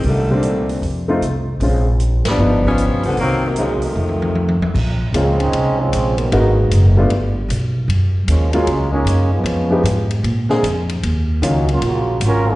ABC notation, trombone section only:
X:1
M:4/4
L:1/8
Q:"Swing" 1/4=153
K:Bbm
V:1 name="Trombone section"
z8 | z8 | z8 | z2 [D,F,A,C] [A,CDE]2 [F,A,CD]2 [E,G,B,_C]- |
[E,G,B,_C]3 z4 z | z2 [F,A,B,D] [A,B,DF]2 [A,B,DE]2 [F,A,_CD]- | [F,A,_CD]3 z4 z | z2 [G,B,DE] [G,B,DF] [D,B,FG]2 [G,DFB] [F,B,DA] |]